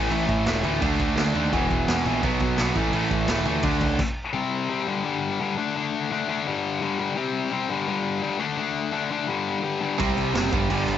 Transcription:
Already playing: A1 E3 A3
0.11 A1 A2 E3 A3, crash
0.29 A1, kick, crash
0.46 E1 A2 E3 A3, snare, crash
0.63 D2 A2 E3 A3, crash
0.81 D2 D3 A3 D4, kick, crash
0.99 D2, kick, crash
1.16 D2 D3 A3 D4, snare, crash
1.34 D#2 D3 A3 D4, crash
1.52 E1 E2 B2 E3, kick, crash
1.70 E1, kick, crash
1.88 E1 E2 B2 E3, snare, crash
2.05 A#1 E2 B2 E3, crash
2.23 B1 B2 F#3 B3, kick, crash
2.40 B2, kick, crash
2.58 B1 B2 F#3 B3, snare, crash
2.75 A1 A2 E3 A3, kick, crash
2.92 A1 A2 E3 A3, crash
3.11 A1, kick, crash
3.27 E1 A2 E3 A3, snare, crash
3.45 D2 A2 E3 A3, crash
3.63 D2 D3 A3 D4, kick, crash
3.81 C#2, kick, crash
3.99 kick, crash
4.33 C3 G3 C4
4.69 C3 G3 C4
4.87 G2 D3 G3
5.04 G2 D3 G3
5.40 G2 D3 G3
5.57 D3 A3 D4
5.75 D3 A3 D4
6.11 D3 A3 D4
6.28 D3 A3 D4
6.47 G2 D3 G3
6.82 G2 D3 G3
6.99 G2 D3 G3
7.16 C3 G3 C4
7.51 C3 G3 C4
7.69 G2 D3 G3
7.87 G2 D3 G3
8.22 G2 D3 G3
8.39 D3 A3 D4
8.57 D3 A3 D4
8.92 D3 A3 D4
9.10 D3 A3 D4
9.27 G2 D3 G3
9.63 G2 D3 G3
9.80 G2 D3 G3
9.98 C2 C3 G3 C4, kick, crash
10.17 C2, crash
10.34 F#1 C3 G3 C4, snare, crash
10.51 G1 G2 D3 G3, kick, crash
10.69 G1 G2 D3 G3, crash
10.88 G1, crash

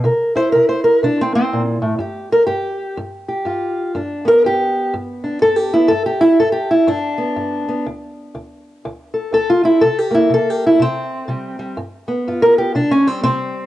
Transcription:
0.04 C3 A#4
0.35 E4 C5
0.52 C3 A#4
0.69 C5
0.84 A#4
1.03 C3 D4
1.21 C4
1.35 C4
1.53 A#2
1.82 A2
1.99 G2 G4
2.32 A#4
2.47 G2 G4
2.97 G2
3.28 G4
3.45 G2 F4
3.95 G2 D4
4.25 B3 A#4
4.44 G2 G4
4.94 G2
5.24 D4
5.42 G2 A4
5.56 G4
5.74 B3 E4
5.88 G2 A4
6.06 G4
6.21 E4
6.40 G2 A4
6.52 G4
6.71 E4
6.87 G2 D4
7.18 B3
7.36 G2
7.69 B3
7.86 D2
8.35 D2
8.85 D2
9.14 A4
9.33 D2 A4
9.50 F4
9.64 C4 E4
9.81 C3 A4
9.99 G4
10.11 A#3 E4
10.30 C3
10.34 A4
10.50 G4
10.67 E4
10.79 C3 C4
11.28 C3 G3
11.59 G3
11.77 G2
12.08 B3
12.28 G2 F4
12.42 A#4
12.58 G4
12.75 C3 D4
12.91 C#4
13.07 G3 C4
13.23 C3 C4

